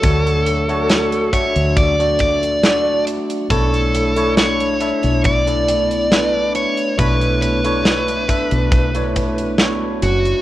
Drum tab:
HH |xxxxxxxxxxxxx-xx|xxxxxxxxxxxxx-xx|xxxxxxxxxxxxx-xx|
SD |----o-------o---|----o-------o---|----o-------o---|
BD |o-----o-o-o-----|o-------o-------|o-----o-o-o-----|